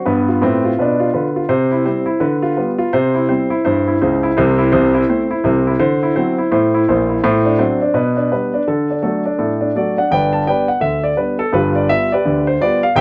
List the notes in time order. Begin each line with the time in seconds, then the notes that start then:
0.06 G2 B3 B4
0.28 F4
0.42 A2 C4 B4
0.65 F4
0.79 B2 D4 B4
1.00 F4
1.14 D3 B4
1.36 F4
1.49 C3 C5
1.72 E4
1.85 G3 C4 C5
2.06 E4
2.20 D3 B4
2.42 F4
2.57 G3 B3 B4
2.78 F4
2.93 C3 C5
3.15 E4
3.28 G3 C4 C5
3.50 E4
3.65 G2 C5
3.88 E4
4.01 C#2 C#3 C5
4.23 E4
4.37 C2 C3 C5
4.59 E4
4.72 C2 C3 C5
4.94 E4
5.09 A3 C4 C5
5.31 E4
5.44 C2 C3 C5
5.67 E4
5.80 D3 C5
6.03 E4
6.16 F#3 C4 C5
6.38 E4
6.52 A2 C5
6.74 E4
6.88 A#1 A#2 C5
7.09 E4
7.24 A2 C5
7.45 D4
7.58 F#3 C4 D4 C5
7.82 D4
7.94 B2 B4
8.17 D4
8.32 G3 B3 D4 B4
8.54 D4
8.68 D3 A4
8.90 D4
9.02 F#3 A3 D4 A4
9.26 D4
9.39 A2 A4
9.61 D4
9.75 F#3 A3 D4 F#4 A4 D5
9.97 D4 F#5
10.11 G1 G2 B4 D5 G5
10.33 A5
10.46 G3 B3 D4 B4 D5 G5
10.68 F#5
10.81 D2 D3 E5
11.04 D5
11.16 G3 B3 D4 B4
11.39 A4
11.52 G1 G2 F4 G4 B4
11.75 D5
11.89 G3 B3 F4 E5
12.12 G4 B4 D5
12.25 D2 D3
12.47 C5
12.60 G3 B3 F4 G4 B4 D5
12.83 F5
12.95 C2 C3 C5 E5 G5